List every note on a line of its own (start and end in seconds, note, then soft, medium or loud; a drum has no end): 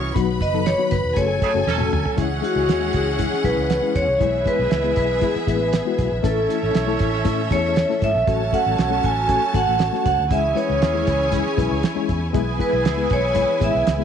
0.00 0.12 C2 loud
0.00 0.13 E3 loud
0.00 0.14 E3 medium
0.00 0.13 C#4 loud
0.00 0.15 C#4 medium
0.00 0.13 F#4 medium
0.00 0.13 G#4 loud
0.00 0.14 C#5 medium
0.00 0.14 C#6 medium
0.15 0.37 B1 loud
0.15 1.16 D#3 medium
0.15 0.37 F#3 medium
0.15 0.38 B3 medium
0.15 1.16 B3 medium
0.15 0.38 D#4 medium
0.15 0.38 F#4 loud
0.15 1.16 F#4 medium
0.15 1.15 B4 medium
0.15 1.15 B5 loud
0.15 kick loud
0.15 closed hi-hat loud
0.41 0.73 F#1 medium
0.41 0.68 D#5 medium
0.41 kick medium
0.41 closed hi-hat medium
0.53 0.68 F#3 medium
0.53 0.68 B3 medium
0.53 0.69 D#4 medium
0.53 0.69 A4 medium
0.66 0.78 C#5 loud
0.66 snare loud
0.66 closed hi-hat medium
0.78 1.01 F#3 medium
0.78 1.01 B3 medium
0.78 1.01 D#4 medium
0.78 1.01 F#4 medium
0.91 1.03 F#1 loud
0.91 1.18 B4 medium
0.91 kick medium
0.91 snare soft
0.91 closed hi-hat medium
1.04 1.15 E1 medium
1.16 1.38 F#1 loud
1.16 2.18 F#3 medium
1.16 1.39 A3 medium
1.16 2.18 A3 medium
1.16 1.39 C#4 medium
1.16 1.39 F#4 medium
1.16 1.39 G#4 medium
1.16 2.16 A4 medium
1.16 2.18 A4 medium
1.16 1.64 C#5 medium
1.16 2.16 G#5 loud
1.16 kick medium
1.16 closed hi-hat loud
1.42 1.51 C#3 medium
1.42 1.51 A3 medium
1.42 1.51 G#4 loud
1.42 muted fingered electric bass stroke soft
1.42 kick loud
1.42 closed hi-hat medium
1.54 1.66 F#1 medium
1.54 1.69 A3 medium
1.54 1.69 C#4 medium
1.54 1.70 F#4 medium
1.54 1.70 G#4 medium
1.67 1.89 E1 loud
1.67 2.16 F#3 loud
1.67 2.15 C#4 medium
1.67 2.15 A4 loud
1.67 snare medium
1.78 2.01 A3 medium
1.78 2.02 C#4 medium
1.78 2.02 F#4 medium
1.78 2.02 A4 medium
1.78 high tom medium
1.93 2.04 D2 medium
1.93 mid tom medium
2.06 floor tom loud
2.16 2.40 C#2 medium
2.16 8.23 E3 medium
2.16 2.32 G#3 medium
2.16 3.92 G#3 medium
2.16 2.32 C#4 medium
2.16 4.17 C#4 medium
2.16 4.19 C#4 medium
2.16 2.32 E4 medium
2.16 3.92 E4 medium
2.16 2.33 G#4 medium
2.16 4.17 G#4 medium
2.16 4.19 G#4 medium
2.16 3.92 C#5 medium
2.16 4.17 F#5 loud
2.16 kick loud
2.16 closed hi-hat medium
2.41 2.65 G#3 medium
2.41 2.65 C#4 medium
2.41 2.65 E4 medium
2.41 2.96 F#4 medium
2.41 2.65 G#4 medium
2.41 closed hi-hat medium
2.56 2.67 C#2 loud
2.68 2.90 D#2 medium
2.68 snare loud
2.68 closed hi-hat medium
2.80 3.03 G#3 medium
2.80 3.03 C#4 medium
2.80 3.03 E4 medium
2.80 3.04 G#4 medium
2.93 3.26 C#2 medium
2.93 3.47 G#4 medium
2.93 kick medium
2.93 closed hi-hat medium
3.18 3.34 G#3 medium
3.18 3.34 C#4 medium
3.18 3.34 E4 medium
3.18 3.34 G#4 medium
3.18 kick medium
3.18 closed hi-hat medium
3.33 snare soft
3.44 3.55 B1 medium
3.44 3.67 G#3 medium
3.44 3.67 C#4 medium
3.44 3.67 E4 medium
3.44 3.67 G#4 medium
3.44 3.97 B4 loud
3.44 kick loud
3.44 closed hi-hat medium
3.57 3.79 C#2 medium
3.70 snare loud
3.70 closed hi-hat medium
3.82 4.04 G#3 medium
3.82 4.05 C#4 medium
3.82 4.05 E4 medium
3.82 4.05 G#4 medium
3.96 4.06 E2 medium
3.96 4.43 C#5 loud
3.96 kick medium
3.96 closed hi-hat medium
4.08 4.19 C2 medium
4.20 4.42 B1 medium
4.20 4.35 G#3 medium
4.20 5.95 G#3 medium
4.20 4.35 B3 medium
4.20 6.22 B3 medium
4.20 6.20 B3 medium
4.20 5.95 E4 medium
4.20 4.36 E4 medium
4.20 6.22 G#4 medium
4.20 6.20 G#4 medium
4.20 4.36 G#4 medium
4.20 5.95 B4 medium
4.20 6.20 E5 medium
4.20 kick loud
4.20 closed hi-hat medium
4.45 4.68 G#3 medium
4.45 4.68 B3 medium
4.45 4.68 E4 medium
4.45 4.69 G#4 medium
4.45 4.96 B4 medium
4.45 kick medium
4.45 closed hi-hat medium
4.59 4.70 B1 loud
4.71 4.93 C#2 medium
4.71 snare loud
4.71 closed hi-hat medium
4.83 5.06 G#3 medium
4.83 5.06 B3 medium
4.83 5.06 E4 medium
4.83 5.07 G#4 medium
4.96 5.19 B1 medium
4.96 5.23 B4 loud
4.96 kick medium
4.96 closed hi-hat medium
5.21 5.37 G#3 medium
5.21 5.37 B3 medium
5.21 5.37 E4 medium
5.21 5.38 G#4 medium
5.21 5.49 G#4 medium
5.21 kick loud
5.21 closed hi-hat medium
5.36 muted fingered electric bass stroke soft
5.36 snare soft
5.47 5.80 A1 medium
5.47 5.69 G#3 medium
5.47 5.70 B3 medium
5.47 5.70 E4 medium
5.47 5.70 G#4 medium
5.47 6.27 B4 medium
5.47 kick medium
5.47 closed hi-hat medium
5.73 snare loud
5.73 closed hi-hat loud
5.85 6.07 G#3 medium
5.85 6.08 B3 medium
5.85 6.08 E4 medium
5.85 6.08 F#4 medium
5.99 6.10 B1 loud
5.99 kick medium
5.99 closed hi-hat medium
6.12 6.22 A#1 medium
6.23 6.46 A1 loud
6.23 7.98 A3 medium
6.23 6.38 A3 medium
6.23 6.38 C#4 medium
6.23 8.23 C#4 medium
6.23 12.31 C#4 medium
6.23 7.98 E4 medium
6.23 6.38 E4 medium
6.23 6.39 A4 medium
6.23 8.23 A4 medium
6.23 10.27 A4 medium
6.23 6.72 A4 medium
6.23 7.98 C#5 medium
6.23 8.23 E5 medium
6.23 kick loud
6.23 closed hi-hat medium
6.48 6.71 A3 medium
6.48 6.71 C#4 medium
6.48 6.71 E4 medium
6.48 6.72 A4 medium
6.48 closed hi-hat medium
6.63 6.73 A1 loud
6.75 6.96 B1 medium
6.75 snare loud
6.75 closed hi-hat medium
6.87 7.09 A3 medium
6.87 7.09 C#4 medium
6.87 7.10 E4 medium
6.87 7.10 A4 medium
6.99 7.22 A1 medium
6.99 kick loud
6.99 snare soft
6.99 closed hi-hat medium
7.25 7.47 A2 medium
7.25 7.40 A3 medium
7.25 7.40 C#4 medium
7.25 7.41 E4 medium
7.25 7.40 A4 medium
7.25 kick loud
7.25 closed hi-hat loud
7.51 7.83 E2 medium
7.51 7.73 A3 medium
7.51 7.73 C#4 medium
7.51 7.74 E4 medium
7.51 7.74 G#4 medium
7.51 8.04 C#5 loud
7.51 kick loud
7.51 closed hi-hat medium
7.76 snare loud
7.76 closed hi-hat medium
7.89 8.11 A3 medium
7.89 8.11 C#4 medium
7.89 8.12 E4 medium
7.89 8.12 A4 medium
7.89 snare soft
8.02 8.13 G#2 medium
8.02 8.55 E5 loud
8.02 kick medium
8.02 closed hi-hat medium
8.15 8.26 A#1 medium
8.26 8.49 A1 medium
8.26 10.01 F#3 medium
8.26 10.29 F#3 medium
8.26 8.42 A3 medium
8.26 10.01 C#4 medium
8.26 8.42 C#4 medium
8.26 10.27 F#4 medium
8.26 8.42 F#4 medium
8.26 10.01 A4 medium
8.26 8.43 A4 medium
8.26 10.27 C#5 medium
8.26 10.27 A5 loud
8.26 kick loud
8.26 closed hi-hat medium
8.52 8.75 A3 medium
8.52 8.75 C#4 medium
8.52 8.75 F#4 medium
8.52 8.75 A4 medium
8.52 9.06 F#5 loud
8.52 kick medium
8.52 closed hi-hat medium
8.66 8.77 A1 loud
8.78 9.00 B1 medium
8.78 snare loud
8.78 closed hi-hat medium
8.90 9.13 A3 medium
8.90 9.13 C#4 medium
8.90 9.13 F#4 medium
8.90 9.13 A4 medium
9.03 9.36 A1 medium
9.03 9.57 G#5 loud
9.03 kick medium
9.03 closed hi-hat medium
9.28 9.43 A3 medium
9.28 9.44 C#4 medium
9.28 9.44 F#4 medium
9.28 9.44 A4 medium
9.28 kick loud
9.28 closed hi-hat loud
9.53 9.65 G#1 medium
9.53 9.76 A3 medium
9.53 9.77 C#4 medium
9.53 9.77 F#4 medium
9.53 9.77 A4 medium
9.53 10.02 F#5 loud
9.53 kick loud
9.53 closed hi-hat medium
9.68 9.89 A1 medium
9.79 snare loud
9.79 closed hi-hat medium
9.93 10.15 A3 medium
9.93 10.15 C#4 medium
9.93 10.15 F#4 medium
9.93 10.15 A4 medium
9.93 snare soft
10.06 10.17 C#2 medium
10.06 10.32 F#5 loud
10.06 kick loud
10.06 closed hi-hat medium
10.19 10.29 D2 medium
10.30 10.53 C#2 loud
10.30 12.06 E3 medium
10.30 14.04 E3 medium
10.30 10.45 G#3 medium
10.30 10.46 C#4 medium
10.30 12.06 C#4 medium
10.30 12.30 E4 medium
10.30 10.46 E4 medium
10.30 12.05 G#4 medium
10.30 14.04 G#4 medium
10.30 10.46 G#4 medium
10.30 12.30 C#5 medium
10.30 10.58 E5 medium
10.30 12.30 G#5 medium
10.30 kick loud
10.30 closed hi-hat medium
10.55 10.78 G#3 medium
10.55 10.78 C#4 medium
10.55 10.78 E4 medium
10.55 10.79 B4 medium
10.55 11.29 C#5 medium
10.55 closed hi-hat medium
10.70 10.80 C#2 medium
10.82 11.04 D#2 loud
10.82 snare loud
10.82 closed hi-hat medium
10.93 11.16 G#3 medium
10.93 11.17 C#4 medium
10.93 11.17 E4 medium
10.93 11.17 G#4 medium
11.07 11.40 C#2 loud
11.07 kick loud
11.07 snare soft
11.07 closed hi-hat medium
11.31 11.47 G#3 medium
11.31 11.47 C#4 medium
11.31 11.47 E4 medium
11.31 11.47 G#4 medium
11.31 11.80 G#4 medium
11.31 kick loud
11.31 closed hi-hat medium
11.46 snare soft
11.57 11.69 B1 medium
11.57 11.80 G#3 medium
11.57 11.80 C#4 medium
11.57 11.80 E4 medium
11.57 11.80 B4 medium
11.57 kick loud
11.57 closed hi-hat medium
11.71 11.82 C#2 medium
11.83 snare loud
11.83 closed hi-hat loud
11.95 12.18 G#3 medium
11.95 12.18 C#4 medium
11.95 12.18 E4 medium
11.95 12.19 G#4 loud
11.95 muted fingered electric bass stroke soft
12.09 12.31 E2 medium
12.09 kick medium
12.09 closed hi-hat medium
12.33 12.56 B1 medium
12.33 14.04 E3 medium
12.33 12.49 G#3 medium
12.33 12.49 B3 medium
12.33 14.04 B3 medium
12.33 14.04 E4 loud
12.33 12.49 E4 medium
12.33 14.04 G#4 medium
12.33 12.49 G#4 loud
12.33 14.04 B4 medium
12.33 14.04 G#5 medium
12.33 kick loud
12.33 closed hi-hat medium
12.58 12.81 G#3 medium
12.58 12.82 B3 medium
12.58 12.82 E4 medium
12.58 12.82 G#4 medium
12.58 13.13 B4 medium
12.58 kick medium
12.58 closed hi-hat medium
12.73 12.85 B1 loud
12.85 13.07 C#2 medium
12.85 snare loud
12.85 closed hi-hat medium
12.97 13.20 G#3 medium
12.97 13.20 B3 medium
12.97 13.20 E4 medium
12.97 13.20 G#4 medium
13.10 13.43 B1 medium
13.10 13.59 C#5 loud
13.10 kick loud
13.10 closed hi-hat medium
13.34 13.50 G#3 medium
13.34 13.50 B3 medium
13.34 13.51 E4 medium
13.34 13.51 G#4 medium
13.34 kick medium
13.34 closed hi-hat loud
13.60 13.72 A1 medium
13.60 13.83 G#3 medium
13.60 13.83 B3 medium
13.60 13.83 E4 medium
13.60 13.84 G#4 medium
13.60 kick loud
13.60 closed hi-hat medium
13.64 14.04 E5 loud
13.75 13.85 B1 medium
13.87 14.04 C#2 loud
13.87 snare loud
13.87 closed hi-hat medium
13.98 14.04 G#3 medium
13.98 14.04 B3 medium
13.98 14.04 E4 medium
13.98 14.04 G#4 medium
13.98 snare soft